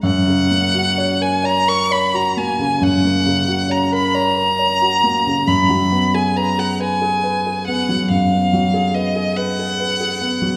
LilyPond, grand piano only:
\new Staff \with { instrumentName = "Grand piano" } { \time 12/8 \key fis \major \tempo 4. = 45 fis,16 cis16 ais16 fis'16 cis''16 ais'16 cis''16 ais'16 cis''16 fis'16 ais16 cis16 fis,16 ais16 cis16 fis'16 cis''16 ais'16 cis''16 ais'16 cis''16 fis'16 ais16 cis16 | fis,16 fis16 b16 gis'16 b'16 gis'16 b'16 gis'16 b'16 gis'16 b16 fis16 fis,16 b16 fis16 gis'16 b'16 gis'16 b'16 gis'16 b'16 gis'16 b16 fis16 | }